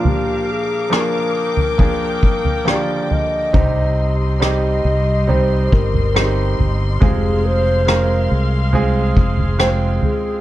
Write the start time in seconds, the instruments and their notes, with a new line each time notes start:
Already playing: grand piano A#2 F3 A#3 D4 F4, string section A#4 F5 D6
0.05 alto flute G4, floor tom
0.51 alto flute G#4
0.90 grand piano F3 A#3 D4 G#4, cross-stick
0.95 alto flute A#4
1.36 string section G5
1.57 floor tom
1.78 grand piano F3 A#3 D4 G#4, kick, floor tom
2.23 kick
2.45 floor tom
2.65 grand piano D3 F3 A#3 G4, cross-stick
2.70 alto flute D5
3.11 alto flute D#5, floor tom
3.53 fretless electric bass C2, grand piano C3 G3 C4 D#4 G4, string section G4 D#5 C6, kick, floor tom
4.40 grand piano G3 C4 D#4 G4, alto flute D#5, cross-stick
4.85 fretless electric bass C2
5.27 grand piano G3 C4 D#4 G4, alto flute C5, floor tom
5.72 fretless electric bass G1, alto flute A#4, kick
5.94 floor tom
6.14 grand piano G3 C4 D#4 G4, cross-stick
6.58 fretless electric bass G1, floor tom
7.00 fretless electric bass F1, grand piano C3 G#3 C4 F4 G#4, string section G#4 F5, alto flute G#4, kick, floor tom
7.46 alto flute C5
7.87 grand piano G#3 C4 F4 A#4, cross-stick
8.31 fretless electric bass C2
8.73 grand piano G#3 C4 F4 G#4, floor tom
9.16 fretless electric bass F1, kick
9.37 floor tom
9.59 grand piano G#3 C4 F4 G5, alto flute C5, cross-stick
10.02 alto flute G#4, floor tom